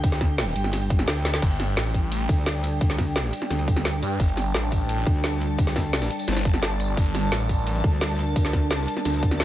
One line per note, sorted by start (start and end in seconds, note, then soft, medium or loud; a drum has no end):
0.00 0.54 D2 loud
0.00 3.48 G5 medium
0.00 kick loud
0.00 closed hi-hat medium
0.00 ride medium
0.12 snare soft
0.12 closed hi-hat soft
0.21 kick medium
0.21 snare soft
0.21 closed hi-hat medium
0.21 ride medium
0.38 snare loud
0.38 closed hi-hat loud
0.38 ride medium
0.56 1.06 G1 loud
0.56 closed hi-hat medium
0.56 ride medium
0.64 snare soft
0.73 snare soft
0.73 closed hi-hat loud
0.73 ride medium
0.82 closed hi-hat soft
0.90 kick loud
0.90 closed hi-hat medium
0.90 ride medium
0.99 snare soft
0.99 closed hi-hat soft
1.08 1.41 D2 loud
1.08 snare loud
1.08 closed hi-hat loud
1.08 ride medium
1.25 snare medium
1.25 snare loud
1.25 closed hi-hat medium
1.25 ride medium
1.34 snare loud
1.34 snare medium
1.34 ride medium
1.42 1.76 G1 loud
1.42 9.45 G3 medium
1.42 9.45 D4 medium
1.42 9.45 D5 medium
1.42 6.95 G5 medium
1.42 kick loud
1.42 closed hi-hat loud
1.42 ride medium
1.42 crash medium
1.51 ride soft
1.60 snare soft
1.60 closed hi-hat medium
1.60 ride medium
1.77 2.28 A1 loud
1.77 snare loud
1.77 closed hi-hat loud
1.77 ride medium
1.94 kick medium
1.94 closed hi-hat medium
1.94 ride medium
2.12 closed hi-hat loud
2.12 ride medium
2.20 ride soft
2.29 2.80 D2 loud
2.29 kick loud
2.29 closed hi-hat medium
2.29 ride medium
2.46 snare loud
2.46 closed hi-hat loud
2.46 ride medium
2.64 closed hi-hat medium
2.64 ride medium
2.81 3.32 D2 loud
2.81 kick loud
2.81 closed hi-hat loud
2.81 ride medium
2.90 snare soft
2.90 closed hi-hat soft
2.98 kick medium
2.98 snare soft
2.98 closed hi-hat medium
2.98 ride medium
3.16 snare loud
3.16 closed hi-hat medium
3.16 ride medium
3.33 closed hi-hat medium
3.33 ride medium
3.38 9.45 A5 medium
3.42 snare soft
3.50 4.01 D2 loud
3.50 snare soft
3.50 closed hi-hat loud
3.50 ride medium
3.59 closed hi-hat soft
3.68 kick loud
3.68 closed hi-hat medium
3.68 ride medium
3.76 snare medium
3.76 closed hi-hat soft
3.85 snare loud
3.85 closed hi-hat loud
3.85 ride medium
4.02 4.18 G2 loud
4.02 closed hi-hat medium
4.02 open hi-hat medium
4.20 4.53 G1 medium
4.20 kick loud
4.20 closed hi-hat medium
4.20 ride medium
4.28 ride soft
4.37 snare soft
4.37 closed hi-hat medium
4.37 ride medium
4.54 5.05 A1 loud
4.54 snare loud
4.54 closed hi-hat medium
4.54 ride medium
4.72 kick medium
4.72 closed hi-hat medium
4.72 ride medium
4.89 closed hi-hat medium
4.89 ride medium
4.98 ride soft
5.06 5.57 D2 loud
5.06 kick loud
5.06 closed hi-hat medium
5.06 ride medium
5.24 snare loud
5.24 closed hi-hat medium
5.24 ride medium
5.41 closed hi-hat medium
5.41 ride medium
5.58 6.09 D2 loud
5.58 kick loud
5.58 closed hi-hat medium
5.58 ride medium
5.67 snare soft
5.67 closed hi-hat soft
5.76 kick medium
5.76 snare loud
5.76 snare soft
5.76 closed hi-hat medium
5.76 ride medium
5.93 snare loud
5.93 closed hi-hat medium
5.93 open hi-hat medium
6.02 snare loud
6.02 ride medium
6.11 closed hi-hat medium
6.19 open hi-hat medium
6.28 6.96 G1 loud
6.28 snare medium
6.28 snare soft
6.28 closed hi-hat medium
6.28 ride medium
6.32 snare medium
6.32 ride medium
6.37 snare loud
6.37 closed hi-hat soft
6.37 ride medium
6.45 kick loud
6.45 closed hi-hat medium
6.45 ride medium
6.54 snare soft
6.54 closed hi-hat soft
6.63 snare loud
6.63 closed hi-hat medium
6.63 ride medium
6.80 closed hi-hat medium
6.80 open hi-hat medium
6.97 7.31 G1 loud
6.97 9.45 A#4 medium
6.97 kick loud
6.97 closed hi-hat medium
6.97 ride medium
7.06 ride soft
7.15 snare soft
7.15 closed hi-hat medium
7.15 ride medium
7.32 7.83 A1 loud
7.32 snare loud
7.32 closed hi-hat medium
7.32 ride medium
7.49 kick medium
7.49 closed hi-hat medium
7.49 ride medium
7.67 closed hi-hat medium
7.67 ride medium
7.75 ride soft
7.84 8.35 D2 loud
7.84 kick loud
7.84 closed hi-hat medium
7.84 ride medium
8.01 snare loud
8.01 closed hi-hat medium
8.01 ride medium
8.19 closed hi-hat medium
8.19 ride medium
8.36 8.87 D2 loud
8.36 kick loud
8.36 closed hi-hat medium
8.36 ride medium
8.45 snare soft
8.45 closed hi-hat soft
8.53 kick medium
8.53 snare soft
8.53 closed hi-hat medium
8.53 ride medium
8.71 snare loud
8.71 closed hi-hat medium
8.71 ride medium
8.88 closed hi-hat medium
8.88 ride medium
8.97 snare soft
9.05 9.45 D2 loud
9.05 snare soft
9.05 closed hi-hat loud
9.05 ride medium
9.14 closed hi-hat soft
9.23 kick loud
9.23 closed hi-hat medium
9.23 ride medium
9.31 snare soft
9.31 closed hi-hat soft
9.40 snare loud
9.40 closed hi-hat medium
9.40 ride medium